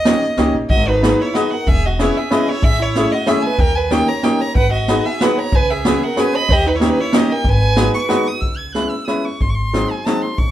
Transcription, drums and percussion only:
0.05 snare, closed hi-hat
0.37 snare, closed hi-hat
0.70 kick, closed hi-hat
1.03 snare, closed hi-hat
1.35 snare, closed hi-hat
1.67 kick, closed hi-hat
1.99 snare, closed hi-hat
2.31 snare, closed hi-hat
2.63 kick, closed hi-hat
2.95 snare, closed hi-hat
3.26 snare, closed hi-hat
3.58 kick, closed hi-hat
3.91 snare, closed hi-hat
4.23 snare, closed hi-hat
4.55 kick, closed hi-hat
4.88 snare, closed hi-hat
5.21 snare, closed hi-hat
5.52 kick, closed hi-hat
5.85 snare, closed hi-hat
6.17 snare, closed hi-hat
6.49 kick, closed hi-hat
6.81 snare, closed hi-hat
7.13 snare, closed hi-hat
7.44 kick, closed hi-hat
7.76 snare, closed hi-hat
8.09 snare, closed hi-hat
8.42 kick, closed hi-hat
8.75 snare, closed hi-hat
9.08 snare, closed hi-hat
9.40 kick, closed hi-hat
9.74 snare, closed hi-hat
10.06 snare, closed hi-hat
10.38 kick, closed hi-hat

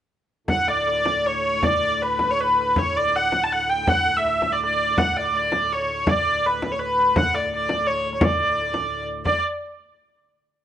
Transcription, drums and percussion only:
0.48 frame drum
1.05 frame drum
1.63 frame drum
2.19 frame drum
2.76 frame drum
3.32 frame drum
3.87 frame drum
4.26 frame drum
4.42 frame drum
4.98 frame drum
5.52 frame drum
6.07 frame drum
6.62 frame drum
7.16 frame drum
7.69 frame drum
8.21 frame drum
8.74 frame drum
9.25 frame drum

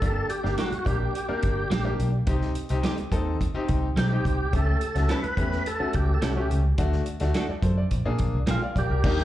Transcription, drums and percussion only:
0.02 kick, closed hi-hat
0.30 closed hi-hat
0.45 snare
0.58 snare, closed hi-hat
0.72 closed hi-hat
0.86 kick, closed hi-hat
1.15 closed hi-hat
1.43 kick, closed hi-hat
1.72 snare, closed hi-hat
2.00 closed hi-hat
2.27 kick, closed hi-hat
2.42 snare
2.55 closed hi-hat
2.69 closed hi-hat
2.83 snare, closed hi-hat
2.98 closed hi-hat
3.12 kick, closed hi-hat
3.41 kick, closed hi-hat
3.69 kick, closed hi-hat
3.97 snare, closed hi-hat
4.25 kick, closed hi-hat
4.53 kick, closed hi-hat
4.81 closed hi-hat
4.96 snare, closed hi-hat
5.09 snare, closed hi-hat
5.24 closed hi-hat
5.37 kick, closed hi-hat
5.52 snare
5.66 closed hi-hat
5.93 kick, closed hi-hat
6.22 snare, closed hi-hat
6.51 closed hi-hat
6.78 kick, closed hi-hat
6.93 snare
7.06 closed hi-hat
7.20 snare, closed hi-hat
7.34 snare, closed hi-hat
7.62 kick, closed hi-hat
7.91 kick, closed hi-hat
8.18 kick, closed hi-hat
8.47 snare, closed hi-hat
8.76 kick, closed hi-hat
9.04 kick, crash
9.18 snare

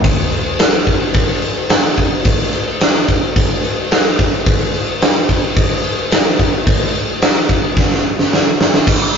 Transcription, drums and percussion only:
0.04 kick, crash
0.32 crash
0.59 snare, crash
0.87 kick, crash
1.14 kick, crash
1.42 crash
1.69 snare, crash
1.97 kick, crash
2.25 kick, crash
2.53 crash
2.81 snare, crash
3.08 kick, crash
3.36 kick, crash
3.64 crash
3.91 snare, crash
4.19 kick, crash
4.46 kick, crash
4.74 crash
5.02 snare, crash
5.29 kick, crash
5.56 kick, crash
5.84 crash
6.12 snare, crash
6.39 kick, crash
6.67 kick, crash
6.95 crash
7.22 snare, crash
7.49 kick, crash
7.77 kick, snare
7.92 snare
8.19 snare
8.33 snare
8.61 snare
8.74 snare
8.87 kick, crash

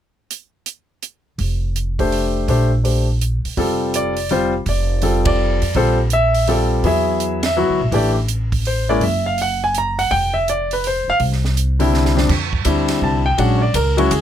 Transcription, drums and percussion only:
0.31 closed hi-hat
0.66 closed hi-hat
1.03 closed hi-hat
1.39 kick, open hi-hat
1.76 closed hi-hat
1.99 kick, open hi-hat
2.12 open hi-hat
2.48 kick, open hi-hat
2.85 open hi-hat
3.21 closed hi-hat
3.45 open hi-hat
3.57 kick, open hi-hat
3.94 closed hi-hat
4.17 open hi-hat
4.29 open hi-hat
4.66 kick, open hi-hat
5.02 open hi-hat
5.25 kick, ride
5.62 open hi-hat
5.75 kick, open hi-hat
6.10 closed hi-hat
6.35 open hi-hat
6.47 open hi-hat
6.84 kick, open hi-hat
7.20 closed hi-hat
7.43 snare, ride
7.92 kick, open hi-hat
8.28 closed hi-hat
8.52 kick, open hi-hat
8.65 open hi-hat
9.01 kick, open hi-hat
9.38 open hi-hat
9.75 closed hi-hat
9.99 open hi-hat
10.11 kick, open hi-hat
10.48 closed hi-hat
10.71 open hi-hat
10.84 open hi-hat
11.20 kick, open hi-hat
11.32 snare
11.45 snare
11.57 closed hi-hat
11.80 open hi-hat
11.94 snare
12.05 snare
12.18 snare
12.29 kick, crash
12.53 kick
12.65 kick, hi-hat pedal, ride
12.88 snare, ride
13.02 kick
13.38 kick, ride
13.74 kick, hi-hat pedal, ride
13.98 ride
14.11 kick, hi-hat pedal, ride

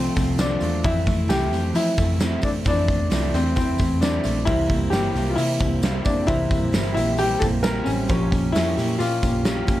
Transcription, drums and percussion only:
0.16 kick, hi-hat pedal, open hi-hat, tambourine
0.39 snare, hi-hat pedal, open hi-hat, tambourine
0.61 hi-hat pedal, open hi-hat, tambourine
0.84 kick, hi-hat pedal, open hi-hat
1.07 kick, hi-hat pedal, open hi-hat, tambourine
1.30 snare, hi-hat pedal, open hi-hat, tambourine
1.53 hi-hat pedal, open hi-hat, tambourine
1.75 hi-hat pedal, open hi-hat, tambourine
1.98 kick, hi-hat pedal, open hi-hat, tambourine
2.20 snare, hi-hat pedal, open hi-hat, tambourine
2.42 kick, hi-hat pedal, open hi-hat, tambourine
2.65 kick, hi-hat pedal, open hi-hat, tambourine
2.88 kick, hi-hat pedal, open hi-hat, tambourine
3.11 snare, hi-hat pedal, open hi-hat, tambourine
3.34 snare, hi-hat pedal, open hi-hat, tambourine
3.56 kick, hi-hat pedal, open hi-hat, tambourine
3.78 kick, hi-hat pedal, open hi-hat, tambourine
4.02 snare, hi-hat pedal, open hi-hat, tambourine
4.24 hi-hat pedal, open hi-hat, tambourine
4.46 kick, hi-hat pedal, open hi-hat, tambourine
4.70 kick, hi-hat pedal, open hi-hat
4.93 snare, hi-hat pedal, open hi-hat, tambourine
5.15 snare, hi-hat pedal, open hi-hat, tambourine
5.38 hi-hat pedal, open hi-hat, tambourine
5.59 kick, hi-hat pedal, open hi-hat, tambourine
5.83 snare, hi-hat pedal, open hi-hat, tambourine
6.05 kick, hi-hat pedal, open hi-hat, tambourine
6.27 kick, hi-hat pedal, open hi-hat, tambourine
6.51 kick, hi-hat pedal, open hi-hat, tambourine
6.73 snare, hi-hat pedal, open hi-hat, tambourine
6.96 hi-hat pedal, open hi-hat, tambourine
7.18 hi-hat pedal, open hi-hat, tambourine
7.41 kick, hi-hat pedal, open hi-hat, tambourine
7.64 snare, hi-hat pedal, open hi-hat, tambourine
7.86 hi-hat pedal, open hi-hat, tambourine
8.09 kick, hi-hat pedal, open hi-hat, tambourine
8.32 kick, hi-hat pedal, open hi-hat, tambourine
8.55 snare, hi-hat pedal, open hi-hat, tambourine
8.78 snare, hi-hat pedal, open hi-hat, tambourine
9.00 hi-hat pedal, open hi-hat, tambourine
9.23 kick, hi-hat pedal, open hi-hat, tambourine
9.45 snare, hi-hat pedal, open hi-hat, tambourine
9.68 kick, hi-hat pedal, open hi-hat, tambourine

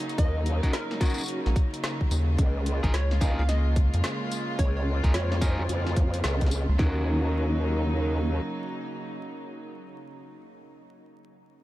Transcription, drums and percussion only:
0.00 closed hi-hat
0.09 closed hi-hat
0.18 kick, closed hi-hat
0.46 closed hi-hat
0.63 kick, closed hi-hat
0.73 snare, closed hi-hat
0.91 snare
1.01 kick, closed hi-hat, tambourine
1.05 tambourine
1.10 tambourine
1.14 tambourine
1.18 tambourine
1.21 tambourine
1.24 tambourine
1.26 closed hi-hat, tambourine
1.46 snare
1.56 kick, closed hi-hat
1.74 closed hi-hat
1.84 snare, closed hi-hat
2.01 kick
2.11 closed hi-hat, tambourine
2.39 kick, closed hi-hat
2.66 closed hi-hat
2.84 kick, closed hi-hat
2.94 snare, closed hi-hat
3.11 snare
3.21 kick, closed hi-hat, tambourine
3.49 snare, closed hi-hat
3.76 kick, closed hi-hat
3.94 closed hi-hat
4.04 snare, closed hi-hat
4.32 closed hi-hat, tambourine
4.59 kick, closed hi-hat
5.04 kick, closed hi-hat
5.14 snare, closed hi-hat
5.32 snare
5.41 kick, closed hi-hat, tambourine
5.69 closed hi-hat
5.87 snare
5.96 kick, closed hi-hat
6.14 closed hi-hat
6.24 snare, closed hi-hat
6.41 kick, closed hi-hat
6.46 snare
6.51 closed hi-hat, tambourine
6.79 kick, snare

